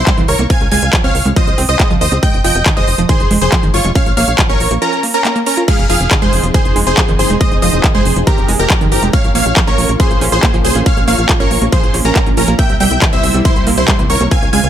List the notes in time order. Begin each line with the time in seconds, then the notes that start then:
Already playing: E4 C5 C6
0.07 G3, kick, clap, closed hi-hat
0.18 C2 E3, closed hi-hat
0.28 C#2 A#4 C#5 C#6, open hi-hat
0.39 C2 A#3, closed hi-hat
0.50 C4 F5 G#5 G#6, kick, closed hi-hat
0.61 C#2, closed hi-hat
0.72 C#2 G#3 F5 G#5 G#6, open hi-hat
0.82 C#2, closed hi-hat
0.93 F3, kick, clap, closed hi-hat
1.04 C#2 C4 C#5 F5 F6, closed hi-hat
1.15 C#2, open hi-hat
1.26 C#2 G#3, closed hi-hat
1.36 F3 C5 D#5 D#6, kick, closed hi-hat
1.47 C#2, closed hi-hat
1.58 C#2 C4, open hi-hat
1.69 C#2 C5 D#5 D#6, closed hi-hat
1.79 G#3, kick, clap, closed hi-hat
1.90 C#2 F3, closed hi-hat
2.01 D#2 C5 D#5 D#6, open hi-hat
2.12 C#2 C4, closed hi-hat
2.23 G#3 D#5 G5 G6, kick, closed hi-hat
2.34 F1, closed hi-hat
2.44 F1 F3 D#5 G5 G6, open hi-hat
2.55 F1, closed hi-hat
2.66 D#3, kick, clap, closed hi-hat
2.77 F1 G#3 C5 D#5 D#6, closed hi-hat
2.88 F1, open hi-hat
2.98 F1 F3, closed hi-hat
3.09 D#3 G#4 C5 C6, kick, closed hi-hat
3.20 F1, closed hi-hat
3.31 F1 G#3, open hi-hat
3.41 F1 G#4 C5 C6, closed hi-hat
3.52 F3, kick, clap, closed hi-hat
3.63 F1 D#3, closed hi-hat
3.74 G1 F4 C#5 C#6, open hi-hat
3.85 F1 G#3, closed hi-hat
3.95 C#4 C#5 F5 F6, kick, closed hi-hat
4.06 A#1, closed hi-hat
4.17 A#1 A#3 C#5 F5 F6, open hi-hat
4.28 A#1, closed hi-hat
4.39 F3, kick, clap, closed hi-hat
4.49 A#1 C#4 A#4 C#5 C#6, closed hi-hat
4.60 A#1, open hi-hat
4.71 A#1 A#3, closed hi-hat
4.82 F3 C#4 A#4 A#5, closed hi-hat
4.93 closed hi-hat
5.03 A#3, open hi-hat
5.14 C#4 A#4 A#5, closed hi-hat
5.25 A#3, clap, closed hi-hat
5.36 A#3, closed hi-hat
5.46 C#4 A#4 A#5, open hi-hat
5.57 F4, closed hi-hat
5.68 F3 G#3 C4 D#4 G#4 F5 F6, kick, closed hi-hat, crash
5.79 F1, closed hi-hat
5.90 F1 F3 G#4 F5 F6, open hi-hat
6.00 F1, closed hi-hat
6.11 D#3, kick, clap, closed hi-hat
6.22 F1 G#3 G#4 C5 C6, closed hi-hat
6.33 F1, open hi-hat
6.43 F1 F3, closed hi-hat
6.54 D#3 G#4 C5 C6, kick, closed hi-hat
6.65 F1, closed hi-hat
6.76 F1 G#3, open hi-hat
6.87 F1 G#4 C5 C6, closed hi-hat
6.98 F3, kick, clap, closed hi-hat
7.08 F1 D#3, closed hi-hat
7.19 G1 G#4 C5 C6, open hi-hat
7.30 F1 G#3, closed hi-hat
7.40 G#3 C5 D#5 D#6, kick, closed hi-hat
7.52 F1, closed hi-hat
7.62 F1 F3 C5 D#5 D#6, open hi-hat
7.73 F1, closed hi-hat
7.84 D#3, kick, clap, closed hi-hat
7.94 F1 G#3 G#4 C5 C6, closed hi-hat
8.05 F1, open hi-hat
8.16 F1 F3, closed hi-hat
8.27 D#3 G4 A#4 A#5, kick, closed hi-hat
8.38 F1, closed hi-hat
8.48 F1 G#3, open hi-hat
8.59 F1 G4 A#4 A#5, closed hi-hat
8.70 F3, kick, clap, closed hi-hat
8.81 F1 D#3, closed hi-hat
8.92 G1 G4 A#4 A#5, open hi-hat
9.03 F1 G#3, closed hi-hat
9.13 A#3 C#4 F4 C#5 F5 F6, kick, closed hi-hat
9.24 A#1, closed hi-hat
9.35 A#1 A#3 C#5 F5 F6, open hi-hat
9.46 A#1, closed hi-hat
9.57 F3, kick, clap, closed hi-hat
9.67 A#1 C#4 A#4 C#5 C#6, closed hi-hat
9.78 A#1, open hi-hat
9.89 A#1 A#3, closed hi-hat
10.00 F3 G#4 C5 C6, kick, closed hi-hat
10.11 A#1, closed hi-hat
10.21 A#1 C#4, open hi-hat
10.32 A#1 G#4 C5 C6, closed hi-hat
10.43 A#3, kick, clap, closed hi-hat
10.54 A#1 F3, closed hi-hat
10.65 C2 G#4 C5 C6, open hi-hat
10.75 A#1 C#4, closed hi-hat
10.86 C#4 C#5 F5 F6, kick, closed hi-hat
10.97 A#1, closed hi-hat
11.08 A#1 A#3 C#5 F5 F6, open hi-hat
11.18 A#1, closed hi-hat
11.29 F3, kick, clap, closed hi-hat
11.40 A#1 C#4 A#4 C#5 C#6, closed hi-hat
11.51 A#1, open hi-hat
11.62 A#1 A#3, closed hi-hat
11.72 F3 G#4 C5 C6, kick, closed hi-hat
11.83 A#1, closed hi-hat
11.94 A#1 C#4, open hi-hat
12.05 A#1 C#4 A#4 A#5, closed hi-hat
12.16 A#4, kick, clap, closed hi-hat
12.26 A#1 C#4, closed hi-hat
12.37 A#1 F3 C#4 A#4 A#5, open hi-hat
12.48 A#1 A#3, closed hi-hat
12.59 C3 G3 A#3 E4 E5 G5 G6, kick, closed hi-hat
12.70 C2, closed hi-hat
12.80 C2 G3 E5 G5 G6, open hi-hat
12.91 C2, closed hi-hat
13.02 E3, kick, clap, closed hi-hat
13.13 C2 E4 C5 E5 E6, closed hi-hat
13.23 C2, open hi-hat
13.34 C2 G3, closed hi-hat
13.45 E3 E4 C5 C6, kick, closed hi-hat
13.56 C2, closed hi-hat
13.67 C2 A#3, open hi-hat
13.77 C2 E4 C5 C6, closed hi-hat
13.88 G3, kick, clap, closed hi-hat
13.99 C2 E3, closed hi-hat
14.10 C#2 A#4 C#5 C#6, open hi-hat
14.21 C2 A#3, closed hi-hat
14.31 C#3 G#3 C4 F4 F5 G#5 G#6, kick, closed hi-hat
14.42 C#2, closed hi-hat
14.53 C#2 G#3 F5 G#5 G#6, open hi-hat
14.64 C#2, closed hi-hat